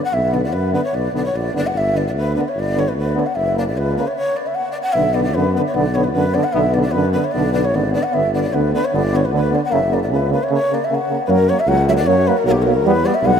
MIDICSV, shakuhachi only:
0, 0, Header, 1, 2, 480
1, 0, Start_track
1, 0, Tempo, 401070
1, 162, Time_signature, 2, 2, 24, 8
1, 7841, Tempo, 392670
1, 16211, End_track
2, 0, Start_track
2, 0, Title_t, "Shakuhachi"
2, 0, Program_c, 0, 77
2, 52, Note_on_c, 0, 78, 88
2, 159, Note_on_c, 0, 76, 94
2, 177, Note_off_c, 0, 78, 0
2, 401, Note_on_c, 0, 74, 76
2, 419, Note_off_c, 0, 76, 0
2, 519, Note_off_c, 0, 74, 0
2, 526, Note_on_c, 0, 74, 77
2, 631, Note_on_c, 0, 71, 84
2, 649, Note_off_c, 0, 74, 0
2, 879, Note_off_c, 0, 71, 0
2, 884, Note_on_c, 0, 71, 78
2, 998, Note_off_c, 0, 71, 0
2, 1007, Note_on_c, 0, 73, 80
2, 1130, Note_on_c, 0, 74, 89
2, 1148, Note_off_c, 0, 73, 0
2, 1370, Note_off_c, 0, 74, 0
2, 1390, Note_on_c, 0, 74, 82
2, 1489, Note_off_c, 0, 74, 0
2, 1496, Note_on_c, 0, 73, 75
2, 1623, Note_on_c, 0, 74, 88
2, 1641, Note_off_c, 0, 73, 0
2, 1858, Note_off_c, 0, 74, 0
2, 1879, Note_on_c, 0, 74, 76
2, 1996, Note_on_c, 0, 78, 81
2, 2014, Note_off_c, 0, 74, 0
2, 2122, Note_on_c, 0, 76, 96
2, 2140, Note_off_c, 0, 78, 0
2, 2358, Note_on_c, 0, 74, 85
2, 2376, Note_off_c, 0, 76, 0
2, 2467, Note_off_c, 0, 74, 0
2, 2483, Note_on_c, 0, 74, 68
2, 2531, Note_off_c, 0, 74, 0
2, 2600, Note_on_c, 0, 71, 85
2, 2813, Note_off_c, 0, 71, 0
2, 2822, Note_on_c, 0, 71, 73
2, 2878, Note_on_c, 0, 70, 61
2, 2896, Note_off_c, 0, 71, 0
2, 2909, Note_on_c, 0, 71, 80
2, 2927, Note_off_c, 0, 70, 0
2, 2973, Note_on_c, 0, 73, 83
2, 2991, Note_off_c, 0, 71, 0
2, 3102, Note_on_c, 0, 74, 98
2, 3119, Note_off_c, 0, 73, 0
2, 3338, Note_on_c, 0, 73, 72
2, 3355, Note_off_c, 0, 74, 0
2, 3450, Note_on_c, 0, 71, 70
2, 3467, Note_off_c, 0, 73, 0
2, 3554, Note_off_c, 0, 71, 0
2, 3567, Note_on_c, 0, 71, 71
2, 3818, Note_on_c, 0, 74, 71
2, 3836, Note_off_c, 0, 71, 0
2, 3905, Note_on_c, 0, 78, 77
2, 3923, Note_off_c, 0, 74, 0
2, 4013, Note_on_c, 0, 76, 92
2, 4031, Note_off_c, 0, 78, 0
2, 4257, Note_off_c, 0, 76, 0
2, 4288, Note_on_c, 0, 74, 77
2, 4387, Note_off_c, 0, 74, 0
2, 4403, Note_on_c, 0, 74, 65
2, 4516, Note_on_c, 0, 71, 84
2, 4534, Note_off_c, 0, 74, 0
2, 4748, Note_off_c, 0, 71, 0
2, 4755, Note_on_c, 0, 71, 65
2, 4876, Note_on_c, 0, 73, 71
2, 4894, Note_off_c, 0, 71, 0
2, 4977, Note_off_c, 0, 73, 0
2, 4984, Note_on_c, 0, 73, 94
2, 5221, Note_on_c, 0, 74, 72
2, 5239, Note_off_c, 0, 73, 0
2, 5342, Note_on_c, 0, 76, 67
2, 5360, Note_off_c, 0, 74, 0
2, 5442, Note_on_c, 0, 78, 84
2, 5460, Note_off_c, 0, 76, 0
2, 5637, Note_off_c, 0, 78, 0
2, 5644, Note_on_c, 0, 74, 82
2, 5711, Note_off_c, 0, 74, 0
2, 5772, Note_on_c, 0, 78, 92
2, 5898, Note_on_c, 0, 76, 106
2, 5916, Note_off_c, 0, 78, 0
2, 6152, Note_on_c, 0, 74, 92
2, 6170, Note_off_c, 0, 76, 0
2, 6259, Note_off_c, 0, 74, 0
2, 6266, Note_on_c, 0, 74, 81
2, 6395, Note_on_c, 0, 71, 91
2, 6413, Note_off_c, 0, 74, 0
2, 6643, Note_off_c, 0, 71, 0
2, 6658, Note_on_c, 0, 71, 80
2, 6711, Note_off_c, 0, 71, 0
2, 6787, Note_on_c, 0, 73, 75
2, 6874, Note_on_c, 0, 74, 101
2, 6892, Note_off_c, 0, 73, 0
2, 7117, Note_on_c, 0, 73, 91
2, 7135, Note_off_c, 0, 74, 0
2, 7226, Note_on_c, 0, 71, 75
2, 7244, Note_off_c, 0, 73, 0
2, 7328, Note_off_c, 0, 71, 0
2, 7335, Note_on_c, 0, 71, 89
2, 7589, Note_on_c, 0, 74, 95
2, 7606, Note_off_c, 0, 71, 0
2, 7702, Note_on_c, 0, 78, 94
2, 7720, Note_off_c, 0, 74, 0
2, 7814, Note_on_c, 0, 76, 100
2, 7832, Note_off_c, 0, 78, 0
2, 8066, Note_on_c, 0, 74, 82
2, 8085, Note_off_c, 0, 76, 0
2, 8163, Note_off_c, 0, 74, 0
2, 8170, Note_on_c, 0, 74, 83
2, 8284, Note_on_c, 0, 71, 94
2, 8302, Note_off_c, 0, 74, 0
2, 8537, Note_off_c, 0, 71, 0
2, 8545, Note_on_c, 0, 71, 75
2, 8686, Note_on_c, 0, 73, 74
2, 8704, Note_off_c, 0, 71, 0
2, 8774, Note_on_c, 0, 74, 105
2, 8792, Note_off_c, 0, 73, 0
2, 9034, Note_off_c, 0, 74, 0
2, 9045, Note_on_c, 0, 74, 84
2, 9179, Note_on_c, 0, 73, 83
2, 9197, Note_off_c, 0, 74, 0
2, 9300, Note_on_c, 0, 74, 88
2, 9318, Note_off_c, 0, 73, 0
2, 9529, Note_off_c, 0, 74, 0
2, 9537, Note_on_c, 0, 74, 86
2, 9648, Note_on_c, 0, 78, 81
2, 9666, Note_off_c, 0, 74, 0
2, 9777, Note_on_c, 0, 76, 97
2, 9795, Note_off_c, 0, 78, 0
2, 10018, Note_off_c, 0, 76, 0
2, 10029, Note_on_c, 0, 74, 80
2, 10129, Note_off_c, 0, 74, 0
2, 10137, Note_on_c, 0, 74, 69
2, 10264, Note_on_c, 0, 71, 81
2, 10282, Note_off_c, 0, 74, 0
2, 10503, Note_off_c, 0, 71, 0
2, 10522, Note_on_c, 0, 71, 79
2, 10647, Note_on_c, 0, 73, 66
2, 10665, Note_off_c, 0, 71, 0
2, 10775, Note_on_c, 0, 74, 99
2, 10794, Note_off_c, 0, 73, 0
2, 11027, Note_on_c, 0, 73, 72
2, 11045, Note_off_c, 0, 74, 0
2, 11139, Note_on_c, 0, 71, 62
2, 11158, Note_off_c, 0, 73, 0
2, 11241, Note_off_c, 0, 71, 0
2, 11259, Note_on_c, 0, 71, 81
2, 11503, Note_on_c, 0, 74, 80
2, 11521, Note_off_c, 0, 71, 0
2, 11604, Note_off_c, 0, 74, 0
2, 11625, Note_on_c, 0, 78, 73
2, 11714, Note_on_c, 0, 76, 102
2, 11733, Note_off_c, 0, 78, 0
2, 11974, Note_on_c, 0, 74, 85
2, 11993, Note_off_c, 0, 76, 0
2, 12080, Note_off_c, 0, 74, 0
2, 12087, Note_on_c, 0, 74, 72
2, 12188, Note_off_c, 0, 74, 0
2, 12210, Note_on_c, 0, 71, 74
2, 12422, Note_off_c, 0, 71, 0
2, 12458, Note_on_c, 0, 71, 79
2, 12586, Note_on_c, 0, 73, 76
2, 12604, Note_off_c, 0, 71, 0
2, 12685, Note_off_c, 0, 73, 0
2, 12712, Note_on_c, 0, 73, 96
2, 12963, Note_on_c, 0, 74, 75
2, 12981, Note_off_c, 0, 73, 0
2, 13088, Note_on_c, 0, 76, 76
2, 13106, Note_off_c, 0, 74, 0
2, 13211, Note_on_c, 0, 78, 78
2, 13229, Note_off_c, 0, 76, 0
2, 13588, Note_off_c, 0, 78, 0
2, 13596, Note_on_c, 0, 71, 75
2, 13647, Note_on_c, 0, 70, 114
2, 13665, Note_off_c, 0, 71, 0
2, 13877, Note_on_c, 0, 73, 96
2, 13895, Note_off_c, 0, 70, 0
2, 14006, Note_on_c, 0, 76, 91
2, 14025, Note_off_c, 0, 73, 0
2, 14111, Note_on_c, 0, 78, 103
2, 14130, Note_off_c, 0, 76, 0
2, 14345, Note_off_c, 0, 78, 0
2, 14359, Note_on_c, 0, 76, 102
2, 14409, Note_off_c, 0, 76, 0
2, 14464, Note_on_c, 0, 74, 93
2, 14580, Note_on_c, 0, 73, 107
2, 14598, Note_off_c, 0, 74, 0
2, 14834, Note_on_c, 0, 71, 90
2, 14853, Note_off_c, 0, 73, 0
2, 14958, Note_on_c, 0, 70, 81
2, 14977, Note_off_c, 0, 71, 0
2, 15060, Note_off_c, 0, 70, 0
2, 15067, Note_on_c, 0, 70, 97
2, 15129, Note_on_c, 0, 67, 80
2, 15147, Note_off_c, 0, 70, 0
2, 15261, Note_on_c, 0, 70, 94
2, 15279, Note_off_c, 0, 67, 0
2, 15561, Note_on_c, 0, 71, 112
2, 15580, Note_off_c, 0, 70, 0
2, 15789, Note_on_c, 0, 74, 97
2, 15808, Note_off_c, 0, 71, 0
2, 15900, Note_on_c, 0, 76, 95
2, 15918, Note_off_c, 0, 74, 0
2, 16035, Note_on_c, 0, 78, 114
2, 16054, Note_off_c, 0, 76, 0
2, 16211, Note_off_c, 0, 78, 0
2, 16211, End_track
0, 0, End_of_file